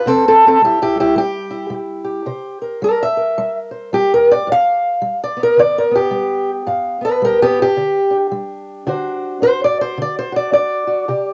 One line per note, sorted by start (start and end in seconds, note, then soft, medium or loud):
0.06 0.57 C3 medium
0.06 0.26 C4 medium
0.06 0.26 A4 loud
0.28 0.45 C4 medium
0.28 0.45 A4 medium
0.47 0.61 C4 medium
0.47 0.64 A4 loud
0.62 0.94 G3 medium
0.62 0.81 E4 medium
0.62 0.81 G4 medium
0.82 0.99 E4 medium
0.82 0.99 G4 loud
0.95 1.16 G3 soft
1.00 1.18 E4 medium
1.00 1.17 G4 medium
1.16 1.67 G3 medium
1.16 1.73 G4 loud
1.50 2.25 E4 soft
1.70 2.22 G3 medium
2.04 2.61 G4 soft
2.26 2.77 C3 medium
2.26 2.85 C5 medium
2.62 2.83 A#4 soft
2.82 3.33 G3 medium
2.82 3.02 A#4 medium
2.82 3.02 D5 loud
3.03 3.57 E5 loud
3.17 4.12 A#4 soft
3.38 3.88 G3 medium
3.71 3.93 C5 soft
3.93 4.43 G3 medium
3.93 4.12 G4 loud
4.14 4.31 A#4 medium
4.31 4.49 D5 loud
4.47 4.98 G2 medium
4.52 5.23 F5 loud
5.02 5.53 G3 medium
5.24 5.41 D5 loud
5.37 5.90 B3 medium
5.43 5.60 A#4 loud
5.57 6.08 D3 medium
5.57 5.77 D5 loud
5.78 5.96 A#4 medium
5.91 7.00 B3 soft
5.95 6.50 G4 loud
6.11 6.63 G3 medium
6.67 7.18 G2 medium
6.67 7.06 F5 medium
7.01 7.41 B3 soft
7.01 7.23 B4 loud
7.06 7.24 D5 loud
7.22 7.73 G3 medium
7.22 7.41 G4 medium
7.22 7.42 A#4 medium
7.42 7.60 B3 medium
7.42 7.60 G4 loud
7.62 8.16 G4 loud
7.77 8.28 D3 medium
8.11 8.86 D4 soft
8.32 8.83 G3 medium
8.87 9.38 D3 medium
8.87 9.41 D4 medium
8.87 10.31 F#4 medium
8.87 9.43 C5 medium
9.42 9.93 D4 medium
9.42 9.61 C5 loud
9.64 9.81 D5 loud
9.81 9.99 C5 loud
9.97 10.49 D3 medium
10.02 10.18 D5 loud
10.19 10.36 C5 loud
10.32 10.86 F#4 soft
10.36 10.52 D5 medium
10.52 11.03 D4 medium
10.52 11.33 D5 loud
10.87 11.06 F#4 medium
11.08 11.33 C3 medium
11.08 11.33 G4 medium